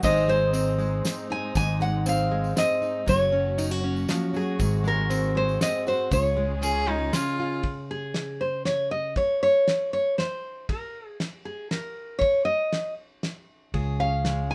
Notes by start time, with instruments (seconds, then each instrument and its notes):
Already playing: string section D#4
0.03 fretless electric bass G#1, steel-string acoustic guitar G#2 G#3 C4 D#4 C5, string section G#3 C4, nylon-string guitar D#5, kick, ride, tambourine
0.16 tambourine
0.28 steel-string acoustic guitar G#3, nylon-string guitar C5, tambourine
0.53 steel-string acoustic guitar C4, ride, tambourine
0.78 steel-string acoustic guitar G#3, tambourine
1.05 steel-string acoustic guitar C4, snare, ride, tambourine
1.17 tambourine
1.30 steel-string acoustic guitar D#4, nylon-string guitar G#5
1.55 fretless electric bass G#1, steel-string acoustic guitar G#2, nylon-string guitar G#5, kick, ride, tambourine
1.80 steel-string acoustic guitar G#3, nylon-string guitar F#5, tambourine
2.06 steel-string acoustic guitar C4, nylon-string guitar F5, ride, tambourine
2.31 steel-string acoustic guitar G#3
2.44 tambourine
2.56 steel-string acoustic guitar C4, nylon-string guitar D#5, snare, ride, tambourine
2.82 steel-string acoustic guitar D#4, tambourine
3.06 fretless electric bass F#1, steel-string acoustic guitar F#3, string section A#3 C#4 F#4, nylon-string guitar C#5, kick, ride, tambourine
3.32 steel-string acoustic guitar C#4
3.58 steel-string acoustic guitar D#4, ride, tambourine
3.71 steel-string acoustic guitar F#4, tambourine
3.84 steel-string acoustic guitar C#4
3.96 tambourine
4.08 steel-string acoustic guitar F3, snare, ride, tambourine
4.34 steel-string acoustic guitar F#3, nylon-string guitar G#4, tambourine
4.59 fretless electric bass G#1, steel-string acoustic guitar G#2, string section G#3 C4, kick, ride, tambourine
4.84 steel-string acoustic guitar G#3, nylon-string guitar A#4, tambourine
5.10 steel-string acoustic guitar C4, ride, tambourine
5.35 steel-string acoustic guitar G#3, nylon-string guitar C5
5.49 tambourine
5.61 steel-string acoustic guitar C4, nylon-string guitar D#5, snare, ride, tambourine
5.87 steel-string acoustic guitar F#4, nylon-string guitar C5, tambourine
6.11 fretless electric bass C#2, steel-string acoustic guitar C#3, string section C#3 C#4 F4 G#4, nylon-string guitar C#5, kick, ride, tambourine
6.25 tambourine
6.37 steel-string acoustic guitar G#3
6.62 steel-string acoustic guitar C#4, fiddle G#4, ride, tambourine
6.87 steel-string acoustic guitar G#3, fiddle D#4
7.13 steel-string acoustic guitar C#4, fiddle F4, snare, ride, tambourine
7.40 steel-string acoustic guitar F4
7.63 kick, ride
7.91 nylon-string guitar G#4
8.14 snare, ride
8.41 nylon-string guitar C5
8.65 nylon-string guitar C#5, snare, ride
8.91 nylon-string guitar D#5
9.16 nylon-string guitar C#5, kick, ride
9.43 nylon-string guitar C#5
9.68 snare, ride
9.93 nylon-string guitar C#5
10.18 nylon-string guitar C5, snare, ride
10.69 nylon-string guitar A#4, kick, ride
11.20 snare, ride
11.45 nylon-string guitar G#4
11.71 nylon-string guitar A#4, snare, ride
12.19 nylon-string guitar C#5, kick, ride
12.45 nylon-string guitar D#5
12.73 snare, ride
13.23 snare, ride
13.74 fretless electric bass C#2, steel-string acoustic guitar C#3 G#4, kick, ride
14.00 steel-string acoustic guitar C#4, nylon-string guitar F5
14.25 steel-string acoustic guitar G#3, snare, ride
14.50 steel-string acoustic guitar D#4, nylon-string guitar G#5